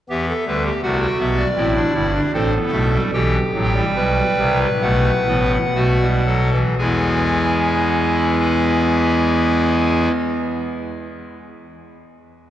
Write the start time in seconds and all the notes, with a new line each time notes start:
0.10 E2 E3 B3 G4 E5
0.28 A4
0.47 D2 D3 G3 B4
0.65 G4
0.82 C2 C3 A3 F#4 F#5
1.01 G5
1.19 B1 B2 B3 E5
1.37 D5
1.57 A1 A2 C4 E4
1.76 D4
1.94 G1 G2 E4
2.14 D4
2.33 A1 A2 C4 A4 C5
2.54 B3
2.72 B1 B2 A3 E5
2.92 G3
3.13 B1 B2 E3 G4 G5
3.54 A1 A2 F#3
3.75 G3
3.95 B1 B2 B4
4.38 C2 C3
4.82 B1 B2 A3 F#5
5.27 A1 A2 B3
5.75 B1 B2 A3 F#4
6.01 G3
6.26 F#3 A4
6.52 E3
6.78 E2 E3 G#3 B3 E4 G#4 G#5